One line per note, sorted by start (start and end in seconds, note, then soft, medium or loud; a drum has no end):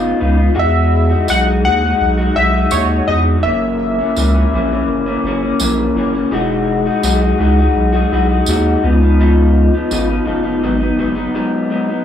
0.00 0.14 F1 medium
0.00 0.18 C#3 medium
0.00 0.19 B3 medium
0.00 0.19 D#4 medium
0.00 0.20 F4 loud
0.19 0.50 C#2 medium
0.19 0.38 C#3 medium
0.19 0.38 B3 medium
0.19 0.37 D#4 medium
0.19 0.36 F4 medium
0.37 0.55 B3 soft
0.37 0.56 D#4 soft
0.37 0.55 F4 soft
0.55 1.15 E2 loud
0.55 1.09 E3 medium
0.55 1.10 G#3 medium
0.55 1.08 F#4 medium
0.59 1.32 E5 loud
1.09 1.27 G#3 soft
1.09 1.28 D#4 soft
1.09 1.28 F#4 medium
1.28 1.67 B1 medium
1.28 1.46 E3 medium
1.28 1.46 G#3 medium
1.28 1.45 D#4 medium
1.28 1.45 F#4 medium
1.28 1.44 F#5 loud
1.28 tambourine medium
1.46 1.63 G#3 soft
1.46 1.64 D#4 soft
1.46 1.64 F#4 medium
1.64 1.94 D#2 medium
1.64 1.82 E3 medium
1.64 1.82 G#3 medium
1.64 1.82 D#4 medium
1.64 1.81 F#4 medium
1.64 2.39 F#5 loud
1.82 2.19 G#3 soft
1.82 2.18 D#4 soft
1.82 2.16 F#4 soft
2.01 2.30 B1 medium
2.18 2.35 G#3 soft
2.18 2.36 D#4 medium
2.18 2.36 F#4 medium
2.35 2.65 B1 medium
2.35 2.54 E3 medium
2.35 2.54 G#3 medium
2.35 2.52 D#4 medium
2.35 2.51 F#4 medium
2.35 2.73 E5 loud
2.52 2.71 G#3 soft
2.52 2.71 D#4 medium
2.52 2.71 F#4 medium
2.71 3.01 D#2 medium
2.71 3.07 G#3 medium
2.71 3.08 D#4 medium
2.71 3.08 F#4 medium
2.71 3.09 C#5 medium
2.71 tambourine medium
3.07 3.37 E2 medium
3.07 3.43 E3 medium
3.07 3.44 G#3 medium
3.07 3.44 D#4 medium
3.07 3.44 F#4 medium
3.07 3.22 D#5 medium
3.43 4.02 F#1 loud
3.43 3.97 F#2 medium
3.43 3.98 E3 medium
3.43 3.98 A#3 medium
3.43 3.97 C#4 medium
3.43 4.83 E5 medium
3.98 4.16 E3 soft
3.98 4.16 A#3 soft
3.98 4.16 C#4 medium
4.16 4.45 C#2 medium
4.16 4.34 F#2 medium
4.16 4.34 E3 medium
4.16 4.35 A#3 medium
4.16 4.33 C#4 loud
4.16 tambourine medium
4.35 4.53 E3 medium
4.35 4.53 A#3 medium
4.35 4.52 C#4 medium
4.53 4.81 A#1 medium
4.53 4.70 F#2 medium
4.53 4.71 E3 medium
4.53 4.71 A#3 medium
4.53 4.69 C#4 medium
4.70 5.07 E3 medium
4.70 5.06 A#3 medium
4.70 5.05 C#4 medium
4.88 5.17 F#1 medium
5.06 5.24 E3 medium
5.06 5.25 A#3 medium
5.06 5.24 C#4 medium
5.24 5.53 F#1 loud
5.24 5.42 F#2 medium
5.24 5.42 E3 medium
5.24 5.42 A#3 medium
5.24 5.41 C#4 medium
5.42 5.59 E3 soft
5.42 5.60 A#3 medium
5.42 5.60 C#4 medium
5.60 5.89 A#1 medium
5.60 5.94 F#2 medium
5.60 5.95 E3 medium
5.60 5.96 A#3 loud
5.60 5.97 C#4 loud
5.60 tambourine medium
5.95 6.25 F#1 medium
5.95 6.14 F#2 medium
5.95 6.14 E3 medium
5.95 6.13 A#3 medium
5.95 6.12 C#4 medium
6.13 6.30 E3 soft
6.13 6.31 A#3 medium
6.13 6.31 C#4 medium
6.31 6.90 E1 loud
6.31 6.85 E3 medium
6.31 6.86 G#3 medium
6.31 6.86 D#4 medium
6.31 6.84 F#4 medium
6.86 7.03 G#3 soft
6.86 7.03 D#4 medium
6.86 7.04 F#4 medium
7.03 7.32 B1 loud
7.03 7.21 E3 medium
7.03 7.22 G#3 loud
7.03 7.22 D#4 medium
7.03 7.20 F#4 loud
7.03 tambourine medium
7.21 7.38 G#3 medium
7.21 7.39 D#4 medium
7.21 7.39 F#4 medium
7.38 7.68 C#2 medium
7.38 7.57 E3 medium
7.38 7.57 G#3 medium
7.38 7.58 D#4 medium
7.38 7.57 F#4 medium
7.58 7.94 G#3 medium
7.58 7.93 D#4 medium
7.58 7.91 F#4 medium
7.76 8.05 B1 loud
7.93 8.11 G#3 medium
7.93 8.12 D#4 medium
7.93 8.11 F#4 medium
8.12 8.41 B1 loud
8.12 8.30 E3 medium
8.12 8.30 G#3 medium
8.12 8.30 D#4 medium
8.12 8.28 F#4 medium
8.29 8.47 G#3 medium
8.29 8.48 D#4 medium
8.29 8.47 F#4 medium
8.46 8.76 D#2 medium
8.46 8.84 G#3 medium
8.46 8.83 D#4 loud
8.46 8.84 F#4 loud
8.46 tambourine medium
8.82 9.70 C#2 loud
8.82 9.01 C#3 medium
8.82 9.01 F3 medium
8.82 9.01 B3 medium
8.82 9.00 D#4 medium
9.01 9.19 F3 soft
9.01 9.20 B3 medium
9.01 9.19 D#4 medium
9.19 9.73 C#3 medium
9.19 9.74 F3 medium
9.19 9.73 B3 medium
9.19 9.72 D#4 medium
9.73 9.91 F3 soft
9.73 9.92 B3 medium
9.73 9.91 D#4 medium
9.91 10.20 G#1 loud
9.91 10.09 C#3 medium
9.91 10.09 F3 medium
9.91 10.08 B3 loud
9.91 10.07 D#4 loud
9.91 tambourine medium
10.08 10.24 F3 medium
10.08 10.26 B3 medium
10.08 10.26 D#4 medium
10.25 10.64 F1 medium
10.25 10.44 C#3 medium
10.25 10.44 F3 medium
10.25 10.43 B3 medium
10.25 10.42 D#4 medium
10.43 10.63 F3 medium
10.43 10.63 B3 medium
10.43 10.62 D#4 medium
10.63 10.91 G#1 loud
10.63 10.81 G#2 medium
10.63 10.81 F#3 medium
10.63 10.80 B3 medium
10.63 10.79 D#4 medium
10.80 10.97 F#3 soft
10.80 10.98 B3 medium
10.80 10.98 D#4 medium
10.97 11.28 F#1 loud
10.97 11.16 G#2 medium
10.97 11.16 F#3 medium
10.97 11.15 B3 medium
10.97 11.14 D#4 medium
11.15 11.34 F#3 soft
11.15 11.34 B3 medium
11.15 11.34 D#4 medium
11.34 11.69 G#2 medium
11.34 11.69 F#3 loud
11.34 11.71 B3 medium
11.34 11.71 D#4 medium
11.70 11.88 G#2 medium
11.70 11.88 F#3 medium
11.70 11.88 B3 medium
11.70 11.87 D#4 medium
11.88 12.05 F#3 soft
11.88 12.05 B3 soft
11.88 12.05 D#4 soft